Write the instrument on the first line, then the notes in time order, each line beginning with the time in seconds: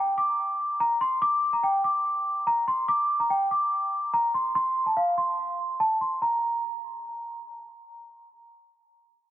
celesta
Already playing: G5
0.18 D6
0.80 A#5
1.01 C6
1.22 D6
1.53 A#5
1.63 G5
1.84 D6
2.47 A#5
2.68 C6
2.88 D6
3.20 A#5
3.30 G5
3.51 D6
4.13 A#5
4.34 C6
4.55 C6
4.86 A5
4.97 F5
5.18 C6
5.80 A5
6.01 C6
6.22 A#5